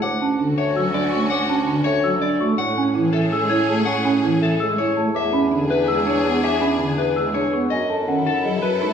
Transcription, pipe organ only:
\new Staff \with { instrumentName = "Pipe organ" } { \clef bass \time 7/8 \key e \mixolydian \tempo 4 = 164 r4 d8 r8 fis8 r8 a8 | r4 d8 r8 fis8 r8 a8 | r4 e8 r8 gis8 r8 a8 | r4 e8 r8 gis8 r8 a8 |
r4 d8 r8 gis8 r8 b8 | r4 d8 r8 gis8 r8 b8 | \key fis \dorian r4 dis8 r8 fis8 r8 gis8 | }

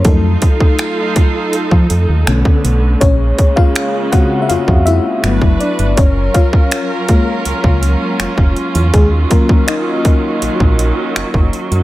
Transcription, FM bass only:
\new Staff \with { instrumentName = "FM bass" } { \clef bass \time 4/4 \key ges \lydian \tempo 4 = 81 f,8 r4. r16 f16 f,16 ees,16 b,,16 r16 b,,8 | bes,,8 r4. f,16 f,8 r16 g,,16 fis,,16 r16 g,,16 | ges,,8 r4. des,16 des,8 r16 f,,16 f,,16 r16 e,16 | ees,8 r4. bes,,16 bes,,8 r16 ges,,16 ges,,16 r16 ges,16 | }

